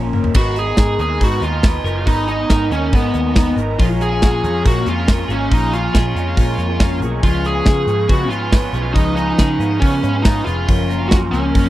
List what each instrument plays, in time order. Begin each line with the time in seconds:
Already playing: clean electric guitar F3 A#3 C#4
0.03 overdriven electric guitar A#2 A#3 C#4 F4 A#4
0.13 picked electric bass F#1, clean electric guitar A#3, mid tom
0.24 floor tom
0.34 picked electric bass G#1, overdriven electric guitar G#3 B3 D#4 A#4, clean electric guitar B3, lead electric guitar F#4, analog synth pad D#5 G#5 A#5, kick, crash
0.56 clean electric guitar D#4, lead electric guitar G#4, hi-hat pedal, open hi-hat
0.67 overdriven electric guitar G#3 B3 D#4 A#4
0.77 picked electric bass G#2, clean electric guitar A#4, kick, snare, hi-hat pedal, open hi-hat
0.99 picked electric bass D#2, overdriven electric guitar G#3 B3 D#4 A#4, clean electric guitar C#4, lead electric guitar G#4, hi-hat pedal, open hi-hat
1.09 clean electric guitar D#4
1.20 overdriven electric guitar G#2 D#3 G#3 B3 D#4 A#4, picked electric bass G#2, clean electric guitar B3, lead electric guitar F#4, kick, hi-hat pedal, open hi-hat
1.41 picked electric bass D#2, clean electric guitar D#4, lead electric guitar F4, hi-hat pedal, open hi-hat
1.52 overdriven electric guitar G#2 D#3 G#3 B3 D#4 A#4
1.63 clean electric guitar B3, kick, snare, hi-hat pedal, open hi-hat
1.84 picked electric bass F#1, overdriven electric guitar G#2 D#3 G#3 B3 D#4 A#4, clean electric guitar A#4, hi-hat pedal, open hi-hat
2.06 picked electric bass G#1, overdriven electric guitar G#3 B3 D#4 A#4, clean electric guitar B3, lead electric guitar D#4, kick, hi-hat pedal, open hi-hat
2.28 clean electric guitar D#4, lead electric guitar D#4, hi-hat pedal, open hi-hat
2.39 overdriven electric guitar G#3 B3 D#4 A#4
2.50 picked electric bass G#2, clean electric guitar A#4, kick, snare, hi-hat pedal, open hi-hat
2.71 picked electric bass D#2, overdriven electric guitar G#3 B3 D#4 A#4, lead electric guitar C#4, clean electric guitar D#4, hi-hat pedal, open hi-hat
2.92 picked electric bass G#2, overdriven electric guitar G#2 D#3 G#3 B3 D#4 A#4, clean electric guitar B3, lead electric guitar B3, kick, hi-hat pedal, open hi-hat
3.14 picked electric bass D#2, clean electric guitar D#4, hi-hat pedal, open hi-hat
3.26 overdriven electric guitar G#2 D#3 G#3 B3 D#4 A#4
3.36 clean electric guitar B3, kick, snare, hi-hat pedal, open hi-hat
3.56 picked electric bass G#1, overdriven electric guitar G#2 D#3 G#3 B3 D#4, clean electric guitar A#4, hi-hat pedal, open hi-hat
3.60 overdriven electric guitar A#4
3.79 picked electric bass A#1, clean electric guitar F3, overdriven electric guitar G#3 C#4 F4 G#4, lead electric guitar F4, analog synth pad F5 G#5 C#6, kick, hi-hat pedal, open hi-hat
4.00 clean electric guitar B3, lead electric guitar G#4, hi-hat pedal, open hi-hat
4.12 clean electric guitar C#4, overdriven electric guitar C#4 F4 G#4
4.22 picked electric bass A#2, clean electric guitar F#4, kick, snare, hi-hat pedal, open hi-hat
4.32 clean electric guitar G#4
4.43 picked electric bass F2, overdriven electric guitar G#3 C#4 F4 G#4, clean electric guitar C#4, hi-hat pedal, open hi-hat
4.64 overdriven electric guitar A#2 G#3 C#4 F4 G#4, picked electric bass A#2, clean electric guitar A#3, lead electric guitar F#4, kick, hi-hat pedal, open hi-hat
4.86 picked electric bass F2, clean electric guitar C#4, lead electric guitar F4, hi-hat pedal, open hi-hat
4.98 overdriven electric guitar A#2 G#3 C#4 F4 G#4
5.07 clean electric guitar A#3, kick, snare, hi-hat pedal, open hi-hat
5.28 picked electric bass G#1, overdriven electric guitar A#2 G#3 C#4 F4 G#4, lead electric guitar C#4, clean electric guitar G#4, hi-hat pedal, open hi-hat
5.50 picked electric bass A#1, clean electric guitar F3, overdriven electric guitar G#3 C#4 F4 G#4, lead electric guitar D#4, kick, hi-hat pedal, open hi-hat
5.72 clean electric guitar C#4, lead electric guitar F4, hi-hat pedal, open hi-hat
5.84 overdriven electric guitar C#4 F4 G#4
5.93 picked electric bass A#2, clean electric guitar G#4, kick, snare, hi-hat pedal, open hi-hat
6.15 picked electric bass F2, overdriven electric guitar G#3 C#4 F4 G#4, clean electric guitar C#4, hi-hat pedal, open hi-hat
6.37 overdriven electric guitar A#2 G#3 C#4 F4 G#4, picked electric bass A#2, clean electric guitar A#3, kick, hi-hat pedal, open hi-hat
6.58 picked electric bass F2, clean electric guitar C#4, hi-hat pedal, open hi-hat
6.69 overdriven electric guitar A#2 G#3 C#4 F4 G#4
6.80 clean electric guitar A#3, kick, snare, hi-hat pedal, open hi-hat
7.00 picked electric bass B1, overdriven electric guitar A#2 G#3 C#4 F4 G#4, clean electric guitar G#4, hi-hat pedal, open hi-hat
7.22 picked electric bass C#2, clean electric guitar F3, overdriven electric guitar G#3 B3 F4 G#4, lead electric guitar F4, analog synth pad B4 F5, kick, hi-hat pedal, open hi-hat
7.45 clean electric guitar C#4, lead electric guitar G#4, hi-hat pedal, open hi-hat
7.55 overdriven electric guitar B3 F4 G#4
7.66 picked electric bass C#3, clean electric guitar G#4, kick, snare, hi-hat pedal, open hi-hat
7.87 picked electric bass G#2, overdriven electric guitar G#3 B3 F4 G#4, clean electric guitar C#4, hi-hat pedal, open hi-hat
8.09 overdriven electric guitar C#3 G#3 B3 F4 G#4, picked electric bass C#3, clean electric guitar B3, lead electric guitar F#4, kick, hi-hat pedal, open hi-hat
8.30 picked electric bass G#2, clean electric guitar C#4, lead electric guitar F4, hi-hat pedal, open hi-hat
8.41 overdriven electric guitar C#3 G#3 B3 F4 G#4
8.52 clean electric guitar B3, kick, snare, hi-hat pedal, open hi-hat
8.73 picked electric bass B1, overdriven electric guitar C#3 G#3 B3 F4 G#4, clean electric guitar G#4, hi-hat pedal, open hi-hat
8.94 picked electric bass C#2, clean electric guitar F3, overdriven electric guitar G#3 B3 F4 G#4, lead electric guitar D#4, kick, hi-hat pedal, open hi-hat
9.16 clean electric guitar B3, lead electric guitar D#4, hi-hat pedal, open hi-hat
9.28 overdriven electric guitar B3 F4 G#4, clean electric guitar C#4
9.38 picked electric bass C#3, clean electric guitar G#4, kick, snare, hi-hat pedal, open hi-hat
9.59 picked electric bass G#2, overdriven electric guitar G#3 B3 F4 G#4, clean electric guitar B3, hi-hat pedal, open hi-hat
9.71 clean electric guitar C#4
9.80 overdriven electric guitar C#3 G#3 B3 F4 G#4, picked electric bass C#3, clean electric guitar B3, lead electric guitar C#4, kick, hi-hat pedal, open hi-hat
10.03 picked electric bass G#2, clean electric guitar C#4, hi-hat pedal, open hi-hat
10.15 overdriven electric guitar C#3 G#3 B3 F4 G#4
10.22 clean electric guitar B3, lead electric guitar D#4, kick, snare, hi-hat pedal, open hi-hat
10.45 picked electric bass F1, overdriven electric guitar C#3 G#3 B3 F4 G#4, lead electric guitar F4, clean electric guitar G#4, hi-hat pedal, open hi-hat
10.68 picked electric bass F#1, clean electric guitar F3, overdriven electric guitar F#3 A#3 C#4 F4, analog synth pad A#4 A#5, kick, hi-hat pedal, open hi-hat
10.90 clean electric guitar A#3, hi-hat pedal, open hi-hat
11.01 overdriven electric guitar A#3 C#4 F4
11.09 picked electric bass F#2, clean electric guitar C#4, lead electric guitar F#4, kick, snare, hi-hat pedal, open hi-hat
11.32 picked electric bass C#2, overdriven electric guitar F#3 A#3 C#4, clean electric guitar A#3, lead electric guitar C#4, hi-hat pedal, open hi-hat
11.36 overdriven electric guitar F4
11.55 picked electric bass F#2, clean electric guitar F3, overdriven electric guitar F#3 A#3 C#4 F4, kick, hi-hat pedal, open hi-hat